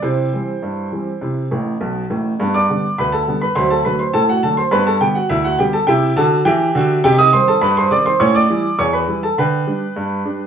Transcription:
<<
  \new Staff \with { instrumentName = "Upright piano" } { \time 2/4 \key c \major \tempo 4 = 103 <e' g' c''>2~ | <e' g' c''>4 r4 | \key g \major r16 <d'' d'''>8. <b' b''>16 <a' a''>8 <b' b''>16 | <c'' c'''>16 <a' a''>16 <b' b''>16 <c'' c'''>16 <a' a''>16 <fis' fis''>16 <a' a''>16 <c'' c'''>16 |
<b' b''>16 <a' a''>16 <g' g''>16 <fis' fis''>16 <e' e''>16 <fis' fis''>16 <g' g''>16 <a' a''>16 | <g' e'' g''>8 <a' a''>8 <g' e'' g''>4 | <g' g''>16 <ees'' ees'''>16 <c'' c'''>16 <a' a''>16 <b' b''>16 <c'' c'''>16 <d'' d'''>16 <c'' c'''>16 | <cis'' cis'''>16 <d'' d'''>8. <cis'' cis'''>16 <b' b''>8 <a' a''>16 |
<b' g'' b''>2 | }
  \new Staff \with { instrumentName = "Upright piano" } { \clef bass \time 2/4 \key c \major c8 <e g c'>8 g,8 <e g c'>8 | <c e'>8 <a,, a,>8 <b,, b,>8 <a,, a,>8 | \key g \major <g, b>8 <d g b>8 d,8 <d g b>8 | <d, fis>8 <d fis a>8 a,8 <d fis a>8 |
<g, b>8 <d g b>8 d,8 <d g b>8 | <c e'>8 <d fis'>8 e8 <d fis'>8 | <c ees'>8 <ees g c'>8 g,8 <ees g c'>8 | <a, cis'>8 <e g e'>8 e,8 <e g e'>8 |
d8 <g d'>8 g,8 <g d'>8 | }
>>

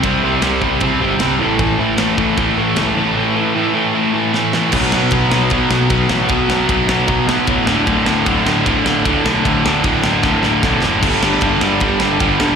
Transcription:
<<
  \new Staff \with { instrumentName = "Distorted electric guitar" } { \clef bass \time 4/4 \key a \dorian \tempo 4 = 153 <c g c'>8 <c g c'>8 <c g c'>8 <c g c'>8 <c g c'>8 <c g c'>8 <c g c'>8 <a, e a>8 | <a, e a>8 <a, e a>8 <a, e a>8 <a, e a>8 <a, e a>8 <a, e a>8 <a, e a>8 <a, e a>8 | <a, e a>8 <a, e a>8 <a, e a>8 <a, e a>8 <a, e a>8 <a, e a>8 <a, e a>8 <a, e a>8 | \key b \minor <b, fis b>8 <b, fis b>8 <b, fis b>8 <b, fis b>8 <b, fis b>8 <b, fis b>8 <b, fis b>8 <b, fis b>8 |
<b, fis b>8 <b, fis b>8 <b, fis b>8 <b, fis b>8 <b, fis b>8 <b, fis b>8 <b, fis b>8 <d, a, d>8 | <d, a, d>8 <d, a, d>8 <d, a, d>8 <d, a, d>8 <d, a, d>8 <d, a, d>8 <d, a, d>8 <d, a, d>8 | <d, a, d>8 <d, a, d>8 <d, a, d>8 <d, a, d>8 <d, a, d>8 <d, a, d>8 <d, a, d>8 <d, a, d>8 | <g, d g>8 <g, d g>8 <g, d g>8 <g, d g>8 <g, d g>8 <g, d g>8 <g, d g>8 <g, d g>8 | }
  \new Staff \with { instrumentName = "Distorted electric guitar" } { \clef bass \time 4/4 \key a \dorian <c g c'>2.~ <c g c'>8 <a, e a>8~ | <a, e a>2.~ <a, e a>8 <a, e a>8~ | <a, e a>2.~ <a, e a>8 r8 | \key b \minor <b, fis b>2.~ <b, fis b>8 <b, fis b>8 |
<b, fis b>2.~ <b, fis b>8 <d, a, d>8~ | <d, a, d>2. <d, a, d>8 <d, a, d>8~ | <d, a, d>2. <d, a, d>8 r8 | <g, d g>2.~ <g, d g>8 <g, d g>8 | }
  \new Staff \with { instrumentName = "Overdriven electric guitar" } { \clef bass \time 4/4 \key a \dorian <c g c'>8 <c g c'>8 <c g c'>8 <c g c'>8 <c g c'>8 <c g c'>8 <c g c'>8 <a, e a>8 | <a, e a>8 <a, e a>8 <a, e a>8 <a, e a>8 <a, e a>8 <a, e a>8 <a, e a>8 <a, e a>8 | <a, e a>8 <a, e a>8 <a, e a>8 <a, e a>8 <a, e a>8 <a, e a>8 <a, e a>8 <a, e a>8 | \key b \minor <b, fis b>8 <b, fis b>8 <b, fis b>8 <b, fis b>8 <b, fis b>8 <b, fis b>8 <b, fis b>8 <b, fis b>8 |
<b, fis b>8 <b, fis b>8 <b, fis b>8 <b, fis b>8 <b, fis b>8 <b, fis b>8 <b, fis b>8 <d, a, d>8 | <d, a, d>8 <d, a, d>8 <d, a, d>8 <d, a, d>8 <d, a, d>8 <d, a, d>8 <d, a, d>8 <d, a, d>8 | <d, a, d>8 <d, a, d>8 <d, a, d>8 <d, a, d>8 <d, a, d>8 <d, a, d>8 <d, a, d>8 <d, a, d>8 | <g, d g>8 <g, d g>8 <g, d g>8 <g, d g>8 <g, d g>8 <g, d g>8 <g, d g>8 <g, d g>8 | }
  \new Staff \with { instrumentName = "Picked electric bass" } { \clef bass \time 4/4 \key a \dorian c,8 c,8 c,8 c,8 c,8 g,,8 c,8 a,,8 | a,,8 a,,8 a,,8 a,,8 a,,8 a,,8 cis,8 a,,8 | r1 | \key b \minor b,,8 b,,8 b,,8 b,,8 b,,8 b,,8 b,,8 a,,8 |
b,8 b,,8 b,,8 b,,8 b,,8 b,,8 a,8 d,,8 | d,,8 d,,8 d,,8 d,,8 d,,8 d,,8 d,,8 b,,8 | d,8 d,,8 d,,8 d,,8 d,,8 d,,8 b,,8 fis,,8 | g,,8 g,,8 g,,8 g,,8 g,,8 g,,8 g,,8 e,,8 | }
  \new DrumStaff \with { instrumentName = "Drums" } \drummode { \time 4/4 <bd cymr>4 <cymr sn>8 bd8 <bd cymr>4 <cymr sn>4 | <bd cymr>4 <cymr sn>8 bd8 <bd cymr>4 <cymr sn>4 | r4 r4 r4 sn8 sn8 | <cymc bd>8 sn8 <bd cymr>8 sn8 <bd cymr>8 sn8 <bd cymr>8 sn8 |
<bd cymr>8 sn8 <bd cymr>8 sn8 <bd cymr>8 sn8 <bd cymr>8 sn8 | <bd cymr>8 sn8 <bd cymr>8 sn8 <bd cymr>8 sn8 <bd cymr>8 sn8 | <bd cymr>8 sn8 <bd cymr>8 sn8 <bd sn>8 sn8 <bd sn>8 sn8 | <cymc bd cymr>8 sn8 <bd cymr>8 sn8 <bd cymr>8 sn8 <bd cymr>8 sn8 | }
>>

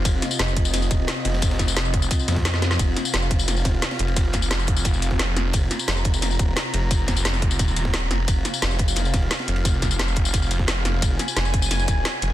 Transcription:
<<
  \new Staff \with { instrumentName = "Analog synth pad" } { \time 4/4 \key f \minor \tempo 4 = 175 << { ees''1~ | ees''1 | f''1~ | f''1 |
bes''1~ | bes''1 | f''1~ | f''1 |
aes''1 | } \\ { <c c' f'>1~ | <c c' f'>1~ | <c c' f'>1~ | <c c' f'>1~ |
<c c' f'>1~ | <c c' f'>1~ | <c c' f'>1~ | <c c' f'>1~ |
<c c' f'>1 | } >> }
  \new Staff \with { instrumentName = "Detuned saw bass" } { \clef bass \time 4/4 \key f \minor f,,8 r8 f,,4. ees,,8 r8 f,,8~ | f,,2 r8 f,4. | f,,8 r8 f,,4. ees,,8 r8 f,,8~ | f,,2 f,,2 |
f,,8 r8 f,,4. ees,,8 r8 f,,8~ | f,,2 ees,,4. f,,8 | f,,8 r8 f,,4. ees,,8 r8 f,,8~ | f,,2 f,,2 |
f,,8 r8 f,,4. ees,,8 r8 f,,8 | }
  \new DrumStaff \with { instrumentName = "Drums" } \drummode { \time 4/4 <hh bd cymr tamb>8 <hh cymr sn tamb>16 tamb16 <hh cymr sn>16 tamb16 <hh bd cymr>16 <cymr tamb>16 <hh cymr sn tamb>16 tamb16 <hh bd cymr tamb>8 <hh cymr sn tamb>16 cymr16 <hh cymr sn>16 <cymr sn>16 | <hh bd cymr sn tamb>16 <cymr sn>16 <hh bd cymr sn tamb>16 tamb16 <hh cymr sn>16 tamb16 <hh bd cymr>16 tamb16 <hh bd cymr tamb>16 tamb16 <hh cymr sn tamb>32 <cymr sn>32 <bd cymr sn>16 <hh cymr sn tamb>16 <cymr sn>16 <hh cymr sn>16 <cymr sn>16 | <hh bd cymr tamb>8 <hh cymr sn tamb>16 tamb16 <hh cymr sn tamb>16 tamb16 <hh bd cymr>16 <cymr tamb>16 <hh cymr sn tamb>16 tamb16 <hh bd cymr sn tamb>16 cymr16 <hh sn tamb>16 <cymr sn>16 <hh cymr>16 cymr16 | <hh bd cymr sn tamb>16 cymr16 <hh bd cymr sn tamb>16 tamb16 <hh cymr sn tamb>16 tamb16 <hh bd cymr>16 tamb16 <hh bd cymr tamb>16 tamb16 <hh cymr tamb>16 <bd sn>16 <hh cymr sn tamb>8 <hh cymr sn>8 |
<hh bd cymr tamb>8 <hh cymr sn tamb>16 tamb16 <hh cymr sn tamb>16 tamb16 <hh bd cymr>16 <cymr tamb>16 <hh cymr sn tamb>16 tamb16 <hh bd cymr tamb>8 <hh cymr sn tamb>16 cymr16 <hh cymr>8 | <hh bd cymr tamb>16 cymr16 <hh bd cymr sn tamb>16 tamb16 <hh cymr sn tamb>16 <cymr sn tamb>16 <hh bd>16 <cymr tamb>16 <hh bd cymr tamb>16 tamb16 <hh cymr tamb>16 <bd sn>16 <hh cymr sn tamb>8 <hh cymr sn>8 | <hh bd cymr tamb>8 <hh cymr sn tamb>16 tamb16 <hh cymr sn tamb>16 tamb16 <hh bd cymr>16 <cymr tamb>16 <hh cymr sn tamb>16 tamb16 <hh bd cymr sn tamb>16 cymr16 <hh sn tamb>16 <cymr sn>16 <hh cymr>16 cymr16 | <hh bd cymr sn tamb>16 cymr16 <hh bd cymr sn tamb>16 tamb16 <hh cymr sn tamb>16 tamb16 <hh bd cymr>16 tamb16 <hh bd cymr tamb>16 tamb16 <hh cymr tamb>16 <bd sn>16 <hh cymr sn tamb>8 <hh cymr sn>8 |
<hh bd cymr tamb>8 <hh cymr sn tamb>16 tamb16 <hh cymr sn tamb>16 tamb16 <hh bd cymr>16 <cymr tamb>16 <hh cymr sn tamb>16 tamb16 <hh bd cymr tamb>8 <hh cymr sn tamb>8 <hh cymr>8 | }
>>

